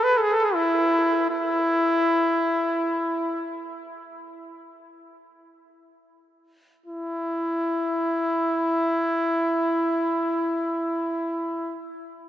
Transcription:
0, 0, Header, 1, 2, 480
1, 0, Start_track
1, 0, Key_signature, 4, "major"
1, 0, Tempo, 500000
1, 11796, End_track
2, 0, Start_track
2, 0, Title_t, "Trumpet"
2, 0, Program_c, 0, 56
2, 33, Note_on_c, 0, 71, 73
2, 168, Note_on_c, 0, 69, 58
2, 183, Note_off_c, 0, 71, 0
2, 191, Note_on_c, 0, 68, 79
2, 205, Note_off_c, 0, 69, 0
2, 301, Note_on_c, 0, 69, 79
2, 315, Note_off_c, 0, 68, 0
2, 403, Note_on_c, 0, 68, 71
2, 417, Note_off_c, 0, 69, 0
2, 524, Note_on_c, 0, 64, 75
2, 539, Note_off_c, 0, 68, 0
2, 1248, Note_off_c, 0, 64, 0
2, 1253, Note_on_c, 0, 64, 69
2, 3554, Note_off_c, 0, 64, 0
2, 6585, Note_on_c, 0, 64, 58
2, 11293, Note_off_c, 0, 64, 0
2, 11796, End_track
0, 0, End_of_file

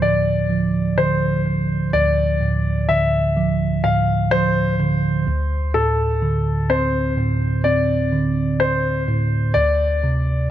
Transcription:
0, 0, Header, 1, 3, 480
1, 0, Start_track
1, 0, Key_signature, -1, "minor"
1, 0, Tempo, 952381
1, 975, Time_signature, 4, 2, 24, 8
1, 5294, End_track
2, 0, Start_track
2, 0, Title_t, "Grand piano"
2, 0, Program_c, 0, 0
2, 11, Note_on_c, 0, 74, 65
2, 472, Note_off_c, 0, 74, 0
2, 492, Note_on_c, 0, 72, 62
2, 953, Note_off_c, 0, 72, 0
2, 974, Note_on_c, 0, 74, 71
2, 1454, Note_on_c, 0, 76, 65
2, 1469, Note_off_c, 0, 74, 0
2, 1914, Note_off_c, 0, 76, 0
2, 1934, Note_on_c, 0, 77, 62
2, 2174, Note_on_c, 0, 72, 80
2, 2182, Note_off_c, 0, 77, 0
2, 2874, Note_off_c, 0, 72, 0
2, 2894, Note_on_c, 0, 69, 71
2, 3375, Note_on_c, 0, 72, 62
2, 3389, Note_off_c, 0, 69, 0
2, 3835, Note_off_c, 0, 72, 0
2, 3851, Note_on_c, 0, 74, 65
2, 4334, Note_on_c, 0, 72, 64
2, 4347, Note_off_c, 0, 74, 0
2, 4794, Note_off_c, 0, 72, 0
2, 4808, Note_on_c, 0, 74, 76
2, 5271, Note_off_c, 0, 74, 0
2, 5294, End_track
3, 0, Start_track
3, 0, Title_t, "Tine electric piano"
3, 0, Program_c, 1, 4
3, 0, Control_c, 1, 64, 127
3, 0, Note_on_c, 1, 38, 55
3, 0, Note_on_c, 1, 45, 39
3, 0, Note_on_c, 1, 50, 41
3, 0, Note_on_c, 1, 53, 46
3, 13, Note_off_c, 1, 45, 0
3, 13, Note_on_c, 1, 45, 35
3, 246, Note_off_c, 1, 53, 0
3, 252, Note_on_c, 1, 53, 38
3, 474, Note_off_c, 1, 50, 0
3, 493, Note_on_c, 1, 50, 40
3, 954, Note_off_c, 1, 38, 0
3, 954, Note_off_c, 1, 45, 0
3, 974, Note_on_c, 1, 38, 52
3, 1193, Note_off_c, 1, 53, 0
3, 1215, Note_on_c, 1, 45, 37
3, 1434, Note_off_c, 1, 50, 0
3, 1459, Note_on_c, 1, 50, 38
3, 1697, Note_on_c, 1, 53, 43
3, 1931, Note_off_c, 1, 45, 0
3, 1937, Note_on_c, 1, 45, 41
3, 2174, Note_off_c, 1, 53, 0
3, 2180, Note_on_c, 1, 53, 40
3, 2396, Note_off_c, 1, 50, 0
3, 2417, Note_on_c, 1, 50, 37
3, 2634, Note_off_c, 1, 38, 0
3, 2636, Note_off_c, 1, 45, 0
3, 2643, Note_off_c, 1, 53, 0
3, 2649, Note_off_c, 1, 50, 0
3, 2655, Note_on_c, 1, 38, 57
3, 2662, Control_c, 1, 64, 0
3, 2763, Control_c, 1, 64, 127
3, 2895, Note_on_c, 1, 45, 46
3, 3136, Note_on_c, 1, 50, 41
3, 3374, Note_on_c, 1, 60, 41
3, 3608, Note_off_c, 1, 45, 0
3, 3614, Note_on_c, 1, 45, 42
3, 3850, Note_off_c, 1, 60, 0
3, 3856, Note_on_c, 1, 60, 37
3, 4075, Note_off_c, 1, 50, 0
3, 4096, Note_on_c, 1, 50, 38
3, 4554, Note_off_c, 1, 45, 0
3, 4555, Note_off_c, 1, 38, 0
3, 4575, Note_on_c, 1, 45, 53
3, 4795, Note_off_c, 1, 50, 0
3, 4795, Note_off_c, 1, 60, 0
3, 4807, Note_off_c, 1, 45, 0
3, 4815, Note_on_c, 1, 38, 52
3, 4821, Control_c, 1, 64, 0
3, 4913, Control_c, 1, 64, 127
3, 5057, Note_on_c, 1, 48, 45
3, 5294, Note_off_c, 1, 38, 0
3, 5294, Note_off_c, 1, 48, 0
3, 5294, End_track
0, 0, End_of_file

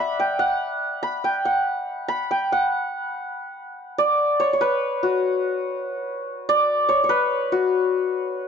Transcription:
0, 0, Header, 1, 2, 480
1, 0, Start_track
1, 0, Tempo, 419287
1, 1422, Time_signature, 3, 2, 24, 8
1, 9707, End_track
2, 0, Start_track
2, 0, Title_t, "Santur"
2, 0, Program_c, 0, 15
2, 0, Note_on_c, 0, 74, 71
2, 0, Note_on_c, 0, 76, 75
2, 0, Note_on_c, 0, 78, 85
2, 0, Note_on_c, 0, 83, 98
2, 224, Note_on_c, 0, 79, 82
2, 292, Note_off_c, 0, 78, 0
2, 449, Note_on_c, 0, 78, 81
2, 517, Note_off_c, 0, 79, 0
2, 1171, Note_off_c, 0, 83, 0
2, 1176, Note_on_c, 0, 83, 92
2, 1422, Note_on_c, 0, 79, 84
2, 1491, Note_off_c, 0, 78, 0
2, 1664, Note_on_c, 0, 78, 63
2, 1733, Note_off_c, 0, 79, 0
2, 2084, Note_off_c, 0, 74, 0
2, 2382, Note_off_c, 0, 83, 0
2, 2386, Note_on_c, 0, 83, 97
2, 2400, Note_off_c, 0, 76, 0
2, 2643, Note_on_c, 0, 79, 81
2, 2712, Note_off_c, 0, 78, 0
2, 2889, Note_on_c, 0, 78, 76
2, 2958, Note_off_c, 0, 79, 0
2, 4460, Note_off_c, 0, 83, 0
2, 4561, Note_on_c, 0, 74, 98
2, 5034, Note_on_c, 0, 73, 89
2, 5103, Note_off_c, 0, 74, 0
2, 5185, Note_off_c, 0, 73, 0
2, 5189, Note_on_c, 0, 73, 63
2, 5276, Note_on_c, 0, 71, 93
2, 5354, Note_off_c, 0, 78, 0
2, 5758, Note_on_c, 0, 66, 75
2, 7428, Note_on_c, 0, 74, 101
2, 7497, Note_off_c, 0, 73, 0
2, 7885, Note_on_c, 0, 73, 89
2, 7953, Note_off_c, 0, 74, 0
2, 8053, Note_off_c, 0, 73, 0
2, 8058, Note_on_c, 0, 73, 66
2, 8114, Note_off_c, 0, 71, 0
2, 8119, Note_on_c, 0, 71, 96
2, 8606, Note_off_c, 0, 66, 0
2, 8611, Note_on_c, 0, 66, 77
2, 9707, Note_off_c, 0, 66, 0
2, 9707, Note_off_c, 0, 71, 0
2, 9707, Note_off_c, 0, 73, 0
2, 9707, End_track
0, 0, End_of_file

